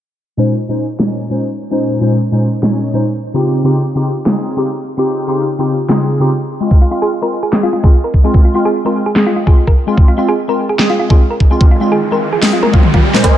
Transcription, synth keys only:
0.37 A#2 G#3 C#4 D#4 C5
0.68 A#2 G#3 C#4 D#4 C5
0.99 A#2 G#3 C#4 D#4 C#5
1.30 A#2 G#3 C#4 D#4 C5
1.70 A#2 G#3 C#4 D#4 C5
2.01 A#2 G#3 C#4 D#4 C5
2.32 A#2 G#3 C#4 D#4 C5
2.62 A#2 G#3 C#4 D#4 C#5
2.93 A#2 G#3 C#4 D#4 C5
3.34 C#3 C4 D#4 F4 G4
3.64 C#3 C4 D#4 F4 G4
3.95 C#3 C4 D#4 F4 G4
4.25 C#3 C4 D#4 F4 G#4
4.56 C#3 C4 D#4 F4 G4
4.97 C#3 C4 D#4 F4 G4
5.27 C#3 C4 D#4 F4 G4
5.58 C#3 C4 D#4 F4 G4
5.88 C#3 C4 D#4 F4 G#4
6.19 C#3 C4 D#4 F4 G4
6.60 G#3 C4 F4
6.90 G#3 C4 F4
7.22 G#3 C4 F4
7.52 G#3 C4 G#4
7.83 G#3 C4 F4
8.24 G#3 C4 F4
8.54 G#3 C4 F4
8.85 G#3 C4 F4
9.15 G#3 C4 G#4
9.46 G#3 C4 F4
9.87 G#3 C4 F4
10.17 G#3 C4 F4
10.48 G#3 C4 F4
10.78 G#3 C4 G#4
11.09 G#3 C4 F4
11.50 G#3 C4 F4
11.80 G#3 C4 F4
12.11 G#3 C4 F4
12.41 G#3 C4 G#4
12.72 G#3 C4 F4
13.13 A#2 G#3 C#4 D#4 C5

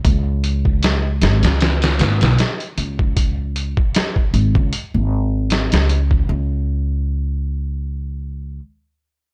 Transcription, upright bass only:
0.05 C#2
1.22 G#1
1.43 C#2
2.00 G#1
2.22 B1
2.78 C#2
4.34 G#1
4.55 C#2
4.94 G#1
5.73 C#2
6.29 C#2

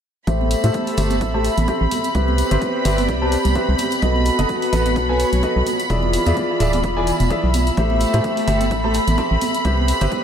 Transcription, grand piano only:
0.27 A3 G4 A4 C5 E5
0.64 A3 G4 A4 C5 E5
0.98 A3 G4 A4 C5 E5
1.34 A3 G4 A4 C5 A5
1.68 C4 G4 A4 C5 E5
2.15 C4 G4 B4 C5 E5
2.51 C4 G4 B4 C5 E5
2.85 C4 G4 B4 C5 E5
3.22 C4 G4 B4 C5 A5
3.55 C4 G4 B4 C5 E5
4.02 B3 F#4 A4 B4 D#5
4.39 B3 F#4 A4 B4 D#5
4.72 B3 F#4 A4 B4 D#5
5.09 B3 F#4 A4 B4 G#5
5.43 F#4 A4 B4 D#5
5.90 E3 F4 G#4 D5 E5
6.26 E3 F4 G#4 D5 E5
6.60 E3 F4 G#4 D5 E5
6.97 E3 F4 G#4 D5 G#5
7.30 E3 F4 G#4 D5 E5
7.77 A3 G4 A4 C5 E5
8.14 A3 G4 A4 C5 E5
8.48 A3 G4 A4 C5 E5
8.84 A3 G4 A4 C5 A5
9.18 C4 G4 A4 C5 E5
9.65 C4 G4 B4 C5 E5
10.01 C4 G4 B4 C5 E5

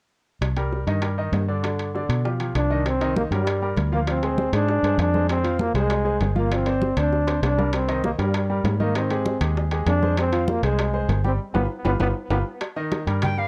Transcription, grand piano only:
0.57 G3 G4 A#4
0.87 D#3 D#4 D#5
1.02 G3 G4 A#4
1.18 D#3 D#4 D#5
1.48 D3 D4 D5
1.63 D3 D4 D5
1.94 D3 D4 D5
2.25 F3 F4 G4
2.40 F3 F4 G4
2.70 D#3 D#4 D#5
3.01 D#3 D#4 D#5
3.31 G3 G4 A#4
3.62 G3 G4 A#4
3.92 F3 F4 F5
4.07 F3 F4 F5
4.23 G#3 G#4 C5
4.54 G#3 G#4 C5
4.84 G#3 G#4 C5
5.14 G#3 G#4 C5
5.44 F3 F4 F5
5.75 G#3 G#4 C5
6.05 G#3 G#4 C5
6.35 F3 F4 F5
6.51 F3 F4 F5
6.67 C4 C5 D5
6.97 C4 C5 D5
7.27 C4 C5 D5
7.58 G3 G4 A#4
7.88 D#3 D#4 D#5
8.18 G3 G4 A#4
8.50 G3 G4 A#4
8.80 D#3 D#4 D#5
8.95 D#3 D#4 D#5
9.11 G#3 G4 G#4
9.41 G#3 G4 G#4
9.72 G#3 G4 G#4
10.02 G#3 G#4 C5
10.32 F3 F4 F5
10.63 G#3 G#4 C5
10.93 G#3 G#4 C5
11.24 G3 G4 G5
11.54 F4 G4 B4
11.84 F4 G4 B4
12.00 F4 G4 B4
12.30 F4 G4 B4
12.76 D#3 D#4 D#5
13.07 G3 G4 A#4
13.38 G3 G4 A#4

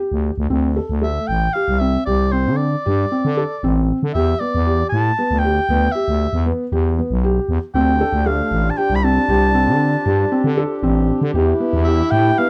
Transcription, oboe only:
1.03 E5
1.27 G5
1.53 F5
1.79 E5
2.05 D5
2.32 C5
2.57 D5
4.14 E5
4.39 D5
4.89 A5
5.39 G5
5.92 E5
7.75 G5
8.26 F5
8.70 A5
8.77 G5
8.95 B5
9.04 A5
11.84 E5
12.11 G5
12.38 F5

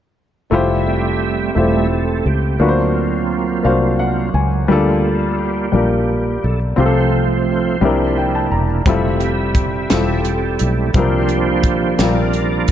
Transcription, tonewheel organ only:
0.50 G3 A3 E5
0.87 C4 G4
1.56 G3 A3 C4 A4 E5
2.26 G4
2.59 F#3 A#3 C4 F4
4.67 G3 A#3 F4
4.95 G#4
5.04 A4
5.38 A#3 G4
6.44 A4
6.76 F3 A3 C4 F4 C5
7.81 A#3 D4 E4
8.86 G3 A3 E5
9.20 C4 G4 E5
9.90 C4 G4 A4
10.59 G3 A3 E4
10.93 F3 A#3 D4 F4 G4 C5
11.98 F4 A#4 D5

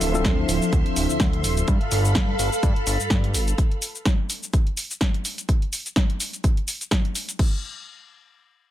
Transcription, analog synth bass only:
0.01 D1
0.25 D2
0.49 D1
0.73 D2
0.86 D1
0.96 D1
1.10 D2
1.20 D2
1.44 D1
1.68 G2
1.81 G1
1.92 G1
2.15 G2
2.39 G1
2.63 G2
2.76 G1
2.87 G1
3.00 G2
3.11 G2
3.34 G1

